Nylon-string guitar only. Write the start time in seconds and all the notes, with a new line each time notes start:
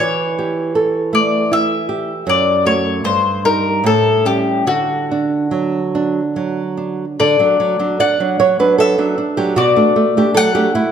0.00 E3
0.39 G4
0.75 A4
1.13 A3
1.51 E4
1.89 G4
2.27 F#2
2.65 A3 F#4
3.04 G2
3.45 G3 D#4
3.84 A2
4.25 G3 C#4
4.67 D3
5.11 D4
5.51 F#3
5.95 D4
6.36 F#3
6.77 D4
7.20 D3 A4
7.39 F#3 D4
7.60 F#3
7.79 F#3 D4
8.00 D4 D5
8.20 F#3 D4
8.40 F#3 C#5
8.59 F#3 D4 B4
8.78 A4
8.98 F#3 D4
9.18 D4
9.37 F#3 D4 G4
9.56 B2 F#4
9.76 A3 D4
9.96 A3
10.17 A3 D4 G4
10.34 F#3 A4
10.55 A3 D4 G4
10.75 A3 E4